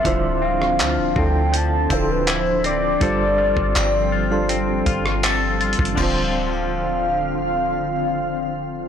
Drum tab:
CC |------------------------------------------------|------------------------------------------------|x-----------------------------------------------|
HH |x-----------x-----------x-----x-----x-----x-----|x-----------x-----------x-----x-----x-----x-x-x-|------------------------------------------------|
CP |------------x-----------------------x-----------|------------x-----------------------x-----------|------------------------------------------------|
SD |---------r--------------------------------------|---------------------------------r--------------|------------------------------------------------|
BD |o-----------------o-----------o-----------------|o--------o--------------------o--------------o--|o-----------------------------------------------|